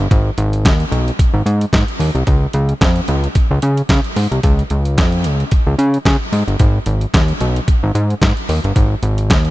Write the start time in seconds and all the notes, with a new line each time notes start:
0.00 closed hi-hat
0.11 G#1, kick, closed hi-hat
0.38 G#1, closed hi-hat
0.53 closed hi-hat
0.65 D#2, kick, snare, closed hi-hat
0.80 closed hi-hat
0.91 B1, closed hi-hat
1.08 closed hi-hat
1.19 kick, closed hi-hat
1.34 G#1
1.46 G#2, closed hi-hat
1.61 closed hi-hat
1.73 G#2, kick, snare, closed hi-hat
1.88 closed hi-hat
1.99 D#2, open hi-hat
2.15 C2, closed hi-hat
2.27 C#2, kick, closed hi-hat
2.53 C#2, closed hi-hat
2.69 closed hi-hat
2.81 F2, kick, snare, closed hi-hat
2.96 closed hi-hat
3.08 C#2, closed hi-hat
3.24 closed hi-hat
3.35 kick, closed hi-hat
3.51 C#2
3.62 C#3, closed hi-hat
3.77 closed hi-hat
3.89 C#3, kick, snare, closed hi-hat
4.04 closed hi-hat
4.16 G#2, open hi-hat
4.31 C2, closed hi-hat
4.43 C#2, kick, closed hi-hat
4.59 closed hi-hat
4.70 C#2, closed hi-hat
4.85 closed hi-hat
4.98 F2, kick, snare, closed hi-hat
5.12 closed hi-hat
5.24 C#2, closed hi-hat
5.40 closed hi-hat
5.51 kick, closed hi-hat
5.67 C#2
5.79 C#3, closed hi-hat
5.94 closed hi-hat
6.05 C#3, kick, snare, closed hi-hat
6.32 G#2, open hi-hat
6.48 G1, closed hi-hat
6.59 G#1, kick, closed hi-hat
6.86 G#1, closed hi-hat
7.01 closed hi-hat
7.14 D#2, kick, snare, closed hi-hat
7.28 closed hi-hat
7.40 B1, closed hi-hat
7.56 closed hi-hat
7.68 kick, closed hi-hat
7.83 G#1
7.95 G#2, closed hi-hat
8.10 closed hi-hat
8.22 G#2, kick, snare, closed hi-hat
8.37 closed hi-hat
8.49 D#2, open hi-hat
8.64 G1, closed hi-hat
8.76 G#1, kick, closed hi-hat
9.03 G#1, closed hi-hat
9.18 closed hi-hat
9.30 D#2, kick, snare, closed hi-hat
9.45 closed hi-hat